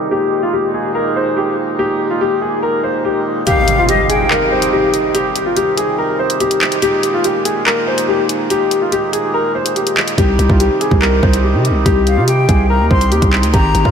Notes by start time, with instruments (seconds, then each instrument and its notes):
Already playing: harmonium D#3 D#4
0.11 harmonium A#2 G#3, grand piano G4
0.42 grand piano F4
0.53 grand piano G4
0.74 grand piano G#4
0.95 grand piano A#4
1.16 grand piano C5
1.37 grand piano G4
1.79 grand piano G4
2.10 grand piano F4
2.21 grand piano G4
2.42 grand piano G#4
2.63 grand piano A#4
2.84 grand piano C5
3.05 grand piano G4
3.47 harmonium C3 D#3 G3 D#4, grand piano G4, flute F5, closed hi-hat, impact
3.68 closed hi-hat
3.78 grand piano F4
3.89 grand piano G4, flute D#5, closed hi-hat
4.09 grand piano G#4, flute G5, closed hi-hat
4.30 grand piano A#4, clap
4.51 grand piano C5
4.62 closed hi-hat
4.73 grand piano G4
4.94 closed hi-hat
5.14 grand piano G4, closed hi-hat
5.36 closed hi-hat
5.46 grand piano F4
5.57 grand piano G4, closed hi-hat
5.77 grand piano G#4, closed hi-hat
5.98 grand piano A#4
6.19 grand piano C5
6.30 closed hi-hat
6.40 grand piano G4, closed hi-hat
6.51 closed hi-hat
6.61 clap
6.72 closed hi-hat
6.82 harmonium A#2 D#3 G#3, grand piano G4, closed hi-hat
7.03 closed hi-hat
7.14 grand piano F4
7.24 grand piano G4, closed hi-hat
7.45 grand piano G#4, closed hi-hat
7.66 grand piano A#4, clap
7.87 grand piano C5
7.98 closed hi-hat
8.08 grand piano G4
8.29 closed hi-hat
8.50 grand piano G4, closed hi-hat
8.71 closed hi-hat
8.82 grand piano F4
8.92 grand piano G4, closed hi-hat
9.13 grand piano G#4, closed hi-hat
9.34 grand piano A#4
9.55 grand piano C5
9.66 closed hi-hat
9.76 grand piano G4, closed hi-hat
9.87 closed hi-hat
9.97 clap
10.08 closed hi-hat
10.18 808-style bass C2, harmonium C3 D#3 G3 D#4, grand piano G4, kick, closed hi-hat
10.39 808-style bass C2, closed hi-hat
10.49 808-style bass C2, grand piano F4, kick
10.60 grand piano G4, closed hi-hat
10.81 grand piano G#4, closed hi-hat
10.91 808-style bass C2, kick
11.02 grand piano A#4, clap
11.23 808-style bass C2, grand piano C5, kick
11.33 closed hi-hat
11.44 grand piano G4
11.54 808-style bass C3
11.65 closed hi-hat
11.70 808-style bass C2
11.86 808-style bass C2, grand piano G4, kick, closed hi-hat
12.07 flute F5, closed hi-hat
12.17 808-style bass C3, grand piano F4
12.28 grand piano G4, flute G5, closed hi-hat
12.48 808-style bass C2, grand piano G#4, kick, closed hi-hat
12.70 grand piano A#4, flute A#5
12.80 808-style bass D#2
12.90 808-style bass C2, grand piano C5, flute C6, kick
13.01 closed hi-hat
13.12 808-style bass D#2, grand piano G4, closed hi-hat
13.22 808-style bass C2, kick, closed hi-hat
13.33 clap
13.43 808-style bass D2, closed hi-hat
13.53 808-style bass G#1, harmonium A#2 G#3, grand piano G4, flute A#5, kick, closed hi-hat
13.75 808-style bass G#1, closed hi-hat
13.85 808-style bass G#2, grand piano F4, kick